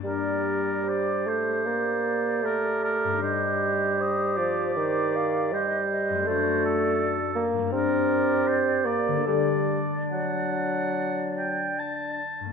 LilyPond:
<<
  \new Staff \with { instrumentName = "Flute" } { \time 4/4 \key g \minor \tempo 4 = 77 d''4 c''4 d''2 | ees''4 c''4 c''8 f''8 ees''8 ees''8 | d''4. r8 d''2 | d''2.~ d''8 r8 | }
  \new Staff \with { instrumentName = "Oboe" } { \time 4/4 \key g \minor bes'4 d''8 c''4. bes'8 bes'8 | c''4 ees''8 d''4. c''4 | c''8 a'4 r8 bes'4 c''8 d''8 | d''4 fis''4. g''8 a''4 | }
  \new Staff \with { instrumentName = "Clarinet" } { \time 4/4 \key g \minor g'1~ | g'1 | fis'4. r8 g'2 | d'2.~ d'8 r8 | }
  \new Staff \with { instrumentName = "Harp" } { \time 4/4 \key g \minor <g, bes d' d''>1 | <g, a ees' c''>1 | <fis, a d' c''>2 <g, g d' bes'>2 | <d a d' a'>1 | }
  \new Staff \with { instrumentName = "Bassoon" } { \clef bass \time 4/4 \key g \minor g4. a8 bes4 a4 | g4. f8 ees4 g4 | a4. bes8 c'4. bes8 | g8 r8 fis2 r4 | }
>>